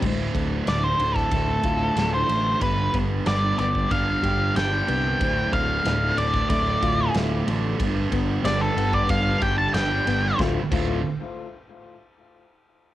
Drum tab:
CC |x---------------|----------------|----------------|----------------|
RD |--x-x-x-x-x-x-x-|x-x-x-x-x-x-x-x-|x-x-x-x-x-x-x-x-|x-x-x-x-x-x-x-x-|
SD |----o--o----o---|----o--o----o---|----o--o----o---|----o-------o-o-|
BD |o-o----oo-o-----|o-o----oo-o-----|o-o----oo-o-----|o-o----oo-o-----|

CC |--x-------------|
RD |----------------|
SD |o---------------|
BD |o-o-------------|